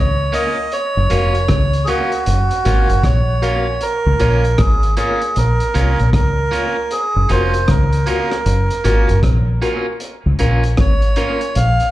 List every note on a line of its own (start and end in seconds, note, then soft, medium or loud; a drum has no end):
0.00 0.30 C#2 medium
0.00 0.34 C#5 loud
0.32 0.56 A#3 medium
0.32 0.57 C#4 medium
0.32 0.57 F4 medium
0.32 0.59 A#4 medium
0.32 0.59 C#5 medium
0.32 0.73 D#5 loud
0.32 0.59 F5 loud
0.32 closed hi-hat medium
0.72 1.86 C#5 loud
0.72 closed hi-hat medium
0.97 1.10 F#1 medium
1.10 1.47 F1 medium
1.10 1.34 A#3 medium
1.10 1.34 C#4 medium
1.10 1.34 F4 medium
1.10 1.36 F#4 medium
1.10 1.36 A#4 medium
1.10 1.37 F5 medium
1.10 closed hi-hat medium
1.35 closed hi-hat soft
1.48 1.86 C#2 medium
1.48 kick medium
1.48 cross-stick loud
1.48 closed hi-hat medium
1.73 closed hi-hat soft
1.85 2.11 A#3 medium
1.85 2.12 C#4 medium
1.85 2.14 F#4 medium
1.85 3.07 F#4 loud
1.85 1.89 G#4 medium
1.85 2.14 A#4 medium
1.85 closed hi-hat medium
1.89 2.11 F4 medium
1.89 2.14 F5 loud
2.12 muted clean electric guitar stroke soft
2.12 closed hi-hat soft
2.26 2.50 F#1 medium
2.26 closed hi-hat medium
2.51 closed hi-hat medium
2.65 2.88 G#1 loud
2.65 2.89 A#3 medium
2.65 2.89 C#4 medium
2.65 2.89 F4 medium
2.65 2.91 F#4 medium
2.65 2.89 A#4 medium
2.65 2.89 F5 medium
2.65 closed hi-hat medium
2.90 3.03 F#1 medium
2.90 2.95 A#4 soft
2.90 2.95 F5 soft
2.90 closed hi-hat soft
3.03 3.77 A#1 medium
3.03 3.84 C#5 medium
3.03 kick loud
3.03 cross-stick loud
3.03 closed hi-hat medium
3.42 3.66 A#3 medium
3.42 3.67 C#4 medium
3.42 3.67 F4 medium
3.42 3.68 F#4 medium
3.42 3.69 A#4 medium
3.42 3.69 F5 medium
3.42 closed hi-hat medium
3.81 4.61 A#4 loud
3.81 closed hi-hat medium
4.06 4.19 C#2 medium
4.19 4.56 A#1 loud
4.19 4.43 A#3 medium
4.19 4.44 C#4 medium
4.19 4.46 F4 medium
4.19 4.44 F4 medium
4.19 4.46 A#4 medium
4.19 4.46 C#5 loud
4.19 closed hi-hat medium
4.44 closed hi-hat soft
4.58 4.95 G#1 medium
4.58 4.95 G#4 medium
4.58 kick loud
4.58 cross-stick loud
4.58 closed hi-hat medium
4.83 closed hi-hat soft
4.97 5.21 A#3 medium
4.97 5.21 C#4 medium
4.97 5.23 F4 medium
4.97 5.21 F4 medium
4.97 5.38 G#4 medium
4.97 5.23 A#4 medium
4.97 5.24 C#5 loud
4.97 closed hi-hat medium
5.22 muted clean electric guitar stroke soft
5.22 closed hi-hat soft
5.36 5.59 A#1 medium
5.36 6.10 A#4 medium
5.36 closed hi-hat medium
5.60 closed hi-hat soft
5.74 5.98 C2 medium
5.74 5.98 A#3 medium
5.74 5.98 C#4 medium
5.74 6.00 F4 medium
5.74 5.99 F4 medium
5.74 5.99 A#4 medium
5.74 5.99 C#5 medium
5.74 closed hi-hat medium
5.99 6.14 A#1 medium
5.99 6.05 A#4 soft
5.99 6.05 C#5 soft
5.99 closed hi-hat soft
6.13 6.50 C#2 medium
6.13 6.94 A#4 medium
6.13 kick loud
6.13 cross-stick loud
6.13 closed hi-hat medium
6.51 6.75 A#3 medium
6.51 6.76 C#4 medium
6.51 6.78 F4 medium
6.51 6.76 F4 medium
6.51 6.78 A#4 medium
6.51 6.78 C#5 medium
6.51 closed hi-hat medium
6.91 7.31 G#4 medium
6.91 closed hi-hat medium
7.16 7.29 F#1 medium
7.29 7.66 F1 medium
7.29 7.53 A#3 medium
7.29 7.53 C#4 medium
7.29 7.55 F4 medium
7.29 7.54 F4 medium
7.29 7.56 F#4 medium
7.29 7.56 A#4 medium
7.29 7.70 C5 medium
7.29 closed hi-hat medium
7.54 closed hi-hat soft
7.68 8.05 C#2 medium
7.68 9.20 A#4 medium
7.68 kick loud
7.68 cross-stick loud
7.68 closed hi-hat medium
7.93 closed hi-hat soft
8.06 8.30 A#3 medium
8.06 8.31 C#4 medium
8.06 8.33 F4 medium
8.06 8.30 F4 medium
8.06 8.33 F#4 medium
8.06 8.33 A#4 loud
8.06 closed hi-hat medium
8.31 muted clean electric guitar stroke soft
8.31 cross-stick medium
8.31 closed hi-hat soft
8.46 8.69 F#1 medium
8.46 closed hi-hat medium
8.70 closed hi-hat medium
8.84 9.08 G#1 medium
8.84 9.08 A#3 medium
8.84 9.08 C#4 medium
8.84 9.10 F4 medium
8.84 9.09 F4 medium
8.84 9.08 F#4 medium
8.84 9.08 A#4 medium
8.84 closed hi-hat medium
9.09 9.23 F#1 medium
9.09 9.15 F#4 soft
9.09 9.15 A#4 soft
9.09 closed hi-hat soft
9.23 9.59 A#1 medium
9.23 kick loud
9.23 cross-stick loud
9.23 closed hi-hat medium
9.62 9.85 A#3 medium
9.62 9.86 C#4 medium
9.62 9.88 F4 medium
9.62 9.86 F4 loud
9.62 9.88 F#4 medium
9.62 9.88 A#4 medium
9.62 closed hi-hat medium
10.00 closed hi-hat medium
10.26 10.39 C#2 medium
10.39 10.76 A#1 medium
10.39 10.63 A#3 medium
10.39 10.65 C#4 medium
10.39 10.63 C#4 medium
10.39 10.65 F4 medium
10.39 10.63 F4 medium
10.39 10.66 A#4 medium
10.39 closed hi-hat medium
10.64 closed hi-hat soft
10.77 11.15 G#1 medium
10.77 11.59 C#5 medium
10.77 kick loud
10.77 cross-stick loud
10.77 closed hi-hat medium
11.02 closed hi-hat soft
11.16 11.40 A#3 medium
11.16 11.43 C#4 medium
11.16 11.41 C#4 medium
11.16 11.43 F4 medium
11.16 11.40 F4 medium
11.16 11.43 A#4 medium
11.16 closed hi-hat medium
11.41 muted clean electric guitar stroke soft
11.41 closed hi-hat soft
11.55 11.79 A#1 medium
11.55 11.89 F5 loud
11.55 closed hi-hat loud
11.80 closed hi-hat medium